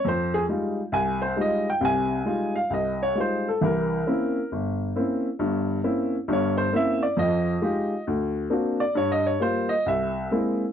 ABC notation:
X:1
M:4/4
L:1/8
Q:"Swing" 1/4=135
K:Fm
V:1 name="Upright piano"
c A z2 a c e g | a3 f e d c =A | B4 z4 | z4 d c =e =d |
e4 z3 =d | (3d e d c e =e2 z2 |]
V:2 name="Upright piano"
F,,2 [G,A,EF] z C,,2 [G,A,EF] z | [C,,C,]2 [G,A,EF] z C,,2 [G,A,EF] z | [C,,=E,]2 [B,CD=E] z G,,,2 [B,CDE] z | [G,,,G,,]2 [B,CD=E] z [G,,,G,,]2 [B,CDE] z |
[F,,F,]2 [A,EFG] z =D,,2 [^A,C=D^F] z | G,,2 [G,B,F] z C,,2 [^G,B,C=E] z |]